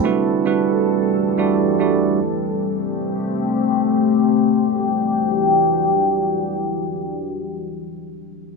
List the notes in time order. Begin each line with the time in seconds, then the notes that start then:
Already playing: A4
0.04 E3 G3 D4 E4 F#4 B4
0.45 G3 D4 E4 F#4 B4
1.38 G3 D4 E4 F#4 D5
1.79 G3 D4 E4 F#4 D5
2.19 A3 C4 G4
4.33 E3 D4 F#4 G4